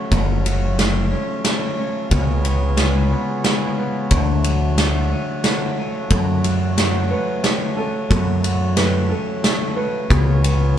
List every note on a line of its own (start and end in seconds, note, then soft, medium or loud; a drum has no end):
0.00 0.10 F#3 soft
0.00 0.77 A3 medium
0.00 2.08 A3 medium
0.00 1.11 C#4 medium
0.00 2.08 C#4 soft
0.00 2.07 C#5 medium
0.11 1.14 F#1 medium
0.11 0.44 F#3 medium
0.11 2.09 F4 medium
0.11 kick medium
0.11 ride soft
0.45 2.11 F#3 medium
0.45 ride soft
0.78 1.44 A3 medium
0.78 snare medium
0.78 ride medium
1.11 1.78 C#4 medium
1.45 2.12 A3 medium
1.45 snare medium
1.45 ride medium
1.79 3.12 C#4 medium
2.11 3.13 C#2 loud
2.11 2.44 C#3 medium
2.11 4.10 B3 medium
2.11 4.10 F4 soft
2.11 4.09 G#4 medium
2.11 10.78 C#5 medium
2.11 kick loud
2.11 ride medium
2.45 4.12 C#3 medium
2.45 ride soft
2.77 3.46 G#3 medium
2.77 snare medium
2.77 ride medium
3.12 3.77 B3 medium
3.44 4.13 G#3 medium
3.44 snare medium
3.44 ride medium
3.78 4.12 B3 medium
4.11 5.13 D2 medium
4.11 5.78 D3 medium
4.11 10.07 A3 medium
4.11 10.07 F#4 medium
4.11 6.08 F#5 medium
4.11 kick medium
4.11 ride soft
4.44 6.44 F#3 medium
4.44 ride soft
4.78 5.45 A3 medium
4.78 snare medium
4.78 ride medium
5.12 5.79 C#4 medium
5.44 6.77 A3 medium
5.44 snare medium
5.44 ride medium
5.80 7.10 C#4 soft
6.10 7.12 F#2 medium
6.10 7.78 F#2 medium
6.10 6.78 A4 medium
6.10 10.06 F#5 medium
6.10 kick medium
6.10 ride medium
6.44 8.11 F#3 medium
6.44 ride soft
6.78 7.42 A3 medium
6.78 7.11 C#5 medium
6.78 snare medium
6.78 ride medium
7.11 7.76 C#4 medium
7.11 7.77 B4 medium
7.44 8.76 A3 medium
7.44 snare medium
7.44 ride medium
7.77 9.11 C#4 medium
7.77 8.08 A4 medium
8.10 9.77 F#2 medium
8.10 9.12 F#2 medium
8.10 8.77 A4 medium
8.10 kick medium
8.10 ride medium
8.44 10.11 F#3 medium
8.44 ride medium
8.77 9.43 A3 medium
8.77 9.10 B4 medium
8.77 snare medium
8.77 ride medium
9.09 9.77 C#4 medium
9.09 9.77 A4 medium
9.44 10.11 A3 medium
9.44 snare medium
9.44 ride soft
9.76 10.78 C#4 medium
9.76 10.10 B4 medium
10.09 10.78 C#2 medium
10.09 10.42 C#3 medium
10.09 10.78 B3 medium
10.09 10.78 F4 medium
10.09 10.77 G#4 medium
10.09 10.78 G#5 medium
10.09 kick loud
10.09 ride soft
10.43 10.78 C#3 medium
10.43 ride soft